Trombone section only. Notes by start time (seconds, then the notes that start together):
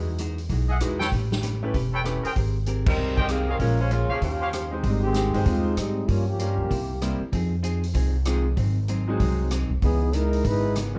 4.86 G3 G#3 C4 D#4
5.03 D#3 G#3 C4 G4
5.46 G#3 C4 D#4 F4
5.76 G3 G#3 C4 D#4
6.07 G3 A#3 C#4 F4
6.27 F3 A#3 C#4 G4
9.82 E3 B3 D#4 G#4
10.14 G#3 D#4 E4 A#4
10.46 G#3 D#4 E4 B4